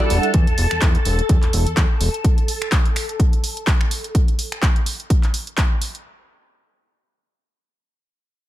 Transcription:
Already playing: A4 A5
0.00 G3 D4 E4 F#4 G4 D5 F#5
0.10 E1, open hi-hat
0.23 closed hi-hat
0.34 E2, kick, closed hi-hat
0.47 E1, closed hi-hat
0.58 E1, open hi-hat
0.71 E2, finger snap, closed hi-hat
0.82 E2, kick, clap, closed hi-hat
0.95 closed hi-hat
1.05 E1, open hi-hat
1.19 closed hi-hat
1.29 E2, kick, closed hi-hat
1.43 E1, clap, closed hi-hat
1.53 E1, open hi-hat
1.67 E2, closed hi-hat
1.77 E2, kick, clap, closed hi-hat
2.01 E1, open hi-hat
2.14 closed hi-hat
2.24 kick, closed hi-hat
2.38 closed hi-hat
2.48 open hi-hat
2.62 finger snap, closed hi-hat
2.72 kick, clap, closed hi-hat
2.85 closed hi-hat
2.96 finger snap, open hi-hat
3.09 closed hi-hat
3.20 kick, closed hi-hat
3.33 closed hi-hat
3.44 open hi-hat
3.57 closed hi-hat
3.67 kick, clap, closed hi-hat
3.81 finger snap
3.91 open hi-hat
4.04 closed hi-hat
4.15 kick, closed hi-hat
4.28 closed hi-hat
4.39 open hi-hat
4.52 finger snap, closed hi-hat
4.63 kick, clap, closed hi-hat
4.76 closed hi-hat
4.86 open hi-hat
5.00 closed hi-hat
5.10 kick, closed hi-hat
5.23 clap, closed hi-hat
5.34 open hi-hat
5.47 closed hi-hat
5.58 kick, clap, closed hi-hat
5.82 open hi-hat
5.95 closed hi-hat

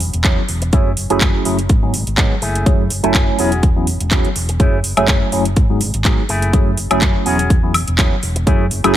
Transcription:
0.00 E1, open hi-hat
0.13 E1, closed hi-hat
0.24 F#3 B3 C#4 E4 G#4, kick, clap, closed hi-hat
0.48 E1, muted clean electric guitar stroke, open hi-hat
0.62 muted clean electric guitar stroke, closed hi-hat
0.72 F#2 F#3 A3 C#4 E4 G#4, kick, closed hi-hat
0.97 F#1, open hi-hat
1.10 F#1 F#3 A3 C#4 E4 G#4, closed hi-hat
1.21 F#2, kick, clap, closed hi-hat
1.45 F#1 F#3 A3 C#4 E4 G#4, muted clean electric guitar stroke, open hi-hat
1.59 closed hi-hat
1.69 G#2, muted clean electric guitar stroke, kick, closed hi-hat
1.82 F#3 G#3 B3 D#4 G#4, muted clean electric guitar stroke
1.94 G#1, open hi-hat
2.07 G#1, closed hi-hat
2.17 G#2 F#3 G#3 B3 D#4 G#4, kick, clap, closed hi-hat
2.42 F#1 A3 E4 G#4, open hi-hat
2.55 closed hi-hat
2.66 F#2 F#3 A3 C#4 E4 G#4, kick, closed hi-hat
2.90 F#1, open hi-hat
3.03 F#1 F#3 A3 C#4 E4 A4 G#5, closed hi-hat
3.14 F#2, kick, clap, closed hi-hat
3.38 E1 F#3 B3 C#4 E4 F#4 G#4, open hi-hat
3.52 closed hi-hat
3.63 E2, kick, closed hi-hat
3.76 F#3 B3 C#4 E4 G#4, muted clean electric guitar stroke
3.87 E1, open hi-hat
4.00 E1, closed hi-hat
4.11 F#3 B3 C#4 E4 G#4, kick, clap, closed hi-hat
4.25 closed hi-hat
4.36 E1, muted clean electric guitar stroke, open hi-hat
4.49 muted clean electric guitar stroke, closed hi-hat
4.59 F#2 F#3 A3 C#4 E4 G#4, kick, closed hi-hat
4.84 F#1, open hi-hat
4.97 F#1 F#3 A3 C#4 E4 G#4, closed hi-hat, high woodblock
5.08 F#2, kick, clap, closed hi-hat
5.32 F#1 F#3 A3 C#4 E4 G#4, muted clean electric guitar stroke, open hi-hat
5.45 closed hi-hat
5.56 G#2, muted clean electric guitar stroke, kick, closed hi-hat
5.70 F#3 G#3 B3 D#4 G#4, muted clean electric guitar stroke
5.81 G#1, open hi-hat
5.94 G#1, closed hi-hat
6.05 F#3 G#3 B3 D#4 G#4, kick, clap, closed hi-hat
6.29 F#1 A3 E4 G#4, open hi-hat
6.42 closed hi-hat
6.53 F#2 F#3 A3 C#4 E4 G#4, kick, closed hi-hat
6.77 F#1, open hi-hat
6.91 F#1 F#3 A3 C#4 E4 G#4, closed hi-hat, high woodblock
7.01 F#2, kick, clap, closed hi-hat
7.25 E1 F#3 B3 C#4 E4 F#4 G#4, open hi-hat
7.39 closed hi-hat
7.50 E2, kick, closed hi-hat
7.63 F#3 B3 C#4 E4 G#4, muted clean electric guitar stroke
7.74 E1, open hi-hat, high woodblock
7.87 E1, closed hi-hat
7.98 F#3 B3 C#4 E4 G#4, kick, clap, closed hi-hat
8.23 E1, muted clean electric guitar stroke, open hi-hat
8.36 muted clean electric guitar stroke, closed hi-hat
8.46 F#2 F#3 A3 C#4 E4 G#4, kick, closed hi-hat
8.71 F#1, open hi-hat
8.84 F#1 F#3 A3 C#4 E4 G#4, closed hi-hat, high woodblock

